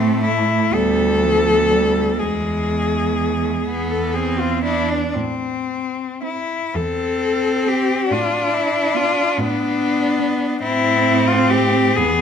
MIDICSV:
0, 0, Header, 1, 5, 480
1, 0, Start_track
1, 0, Key_signature, 0, "minor"
1, 0, Tempo, 1006711
1, 585, Tempo, 980392
1, 1064, Time_signature, 6, 3, 24, 8
1, 2505, Tempo, 1073345
1, 2985, Tempo, 995025
1, 3465, Tempo, 887574
1, 3945, Tempo, 839161
1, 5385, Tempo, 903614
1, 6230, End_track
2, 0, Start_track
2, 0, Title_t, "Cello"
2, 0, Program_c, 0, 42
2, 0, Note_on_c, 0, 60, 62
2, 98, Note_off_c, 0, 60, 0
2, 109, Note_on_c, 0, 64, 59
2, 349, Note_on_c, 0, 69, 70
2, 356, Note_off_c, 0, 64, 0
2, 1058, Note_on_c, 0, 68, 50
2, 1065, Note_off_c, 0, 69, 0
2, 1897, Note_on_c, 0, 69, 45
2, 1905, Note_off_c, 0, 68, 0
2, 2010, Note_on_c, 0, 68, 46
2, 2018, Note_off_c, 0, 69, 0
2, 2135, Note_on_c, 0, 65, 44
2, 2142, Note_off_c, 0, 68, 0
2, 2251, Note_off_c, 0, 65, 0
2, 2254, Note_on_c, 0, 64, 48
2, 2380, Note_on_c, 0, 62, 45
2, 2387, Note_off_c, 0, 64, 0
2, 2463, Note_off_c, 0, 62, 0
2, 2466, Note_on_c, 0, 62, 35
2, 2503, Note_on_c, 0, 60, 53
2, 2510, Note_off_c, 0, 62, 0
2, 2984, Note_off_c, 0, 60, 0
2, 2989, Note_on_c, 0, 64, 50
2, 3240, Note_on_c, 0, 69, 51
2, 3248, Note_off_c, 0, 64, 0
2, 3714, Note_on_c, 0, 67, 55
2, 3722, Note_off_c, 0, 69, 0
2, 3953, Note_on_c, 0, 65, 57
2, 3961, Note_off_c, 0, 67, 0
2, 4191, Note_on_c, 0, 64, 57
2, 4199, Note_off_c, 0, 65, 0
2, 4434, Note_on_c, 0, 65, 62
2, 4443, Note_off_c, 0, 64, 0
2, 4686, Note_on_c, 0, 62, 65
2, 4694, Note_off_c, 0, 65, 0
2, 5382, Note_off_c, 0, 62, 0
2, 5386, Note_on_c, 0, 64, 75
2, 5731, Note_on_c, 0, 65, 66
2, 5739, Note_off_c, 0, 64, 0
2, 5853, Note_on_c, 0, 67, 72
2, 5861, Note_off_c, 0, 65, 0
2, 6094, Note_on_c, 0, 68, 66
2, 6102, Note_off_c, 0, 67, 0
2, 6230, Note_off_c, 0, 68, 0
2, 6230, End_track
3, 0, Start_track
3, 0, Title_t, "Cello"
3, 0, Program_c, 1, 42
3, 0, Note_on_c, 1, 57, 54
3, 350, Note_off_c, 1, 57, 0
3, 353, Note_on_c, 1, 55, 44
3, 587, Note_on_c, 1, 53, 44
3, 595, Note_off_c, 1, 55, 0
3, 818, Note_on_c, 1, 55, 38
3, 826, Note_off_c, 1, 53, 0
3, 1062, Note_off_c, 1, 55, 0
3, 1065, Note_on_c, 1, 56, 38
3, 1721, Note_off_c, 1, 56, 0
3, 1782, Note_on_c, 1, 59, 41
3, 2022, Note_on_c, 1, 60, 41
3, 2029, Note_off_c, 1, 59, 0
3, 2258, Note_off_c, 1, 60, 0
3, 2261, Note_on_c, 1, 62, 35
3, 2502, Note_off_c, 1, 62, 0
3, 3239, Note_on_c, 1, 60, 47
3, 3925, Note_off_c, 1, 60, 0
3, 3953, Note_on_c, 1, 62, 52
3, 4675, Note_on_c, 1, 59, 55
3, 4683, Note_off_c, 1, 62, 0
3, 5387, Note_off_c, 1, 59, 0
3, 5392, Note_on_c, 1, 60, 61
3, 6100, Note_on_c, 1, 59, 58
3, 6108, Note_off_c, 1, 60, 0
3, 6230, Note_off_c, 1, 59, 0
3, 6230, End_track
4, 0, Start_track
4, 0, Title_t, "Cello"
4, 0, Program_c, 2, 42
4, 0, Note_on_c, 2, 57, 40
4, 339, Note_off_c, 2, 57, 0
4, 341, Note_on_c, 2, 59, 39
4, 575, Note_off_c, 2, 59, 0
4, 581, Note_on_c, 2, 59, 35
4, 1053, Note_off_c, 2, 59, 0
4, 1306, Note_on_c, 2, 59, 33
4, 2001, Note_off_c, 2, 59, 0
4, 2014, Note_on_c, 2, 59, 33
4, 2494, Note_off_c, 2, 59, 0
4, 2984, Note_on_c, 2, 60, 33
4, 3173, Note_off_c, 2, 60, 0
4, 3704, Note_on_c, 2, 60, 38
4, 3883, Note_off_c, 2, 60, 0
4, 4424, Note_on_c, 2, 59, 42
4, 4607, Note_off_c, 2, 59, 0
4, 5138, Note_on_c, 2, 59, 50
4, 5319, Note_off_c, 2, 59, 0
4, 5379, Note_on_c, 2, 60, 54
4, 6094, Note_on_c, 2, 59, 49
4, 6102, Note_off_c, 2, 60, 0
4, 6230, Note_off_c, 2, 59, 0
4, 6230, End_track
5, 0, Start_track
5, 0, Title_t, "Cello"
5, 0, Program_c, 3, 42
5, 0, Note_on_c, 3, 45, 47
5, 264, Note_off_c, 3, 45, 0
5, 346, Note_on_c, 3, 38, 47
5, 975, Note_off_c, 3, 38, 0
5, 1063, Note_on_c, 3, 40, 39
5, 1698, Note_off_c, 3, 40, 0
5, 1780, Note_on_c, 3, 40, 38
5, 2418, Note_off_c, 3, 40, 0
5, 2504, Note_on_c, 3, 45, 38
5, 3107, Note_off_c, 3, 45, 0
5, 3236, Note_on_c, 3, 40, 41
5, 3818, Note_off_c, 3, 40, 0
5, 3946, Note_on_c, 3, 45, 45
5, 4542, Note_off_c, 3, 45, 0
5, 4673, Note_on_c, 3, 45, 50
5, 5255, Note_off_c, 3, 45, 0
5, 5386, Note_on_c, 3, 45, 45
5, 6098, Note_on_c, 3, 40, 52
5, 6106, Note_off_c, 3, 45, 0
5, 6230, Note_off_c, 3, 40, 0
5, 6230, End_track
0, 0, End_of_file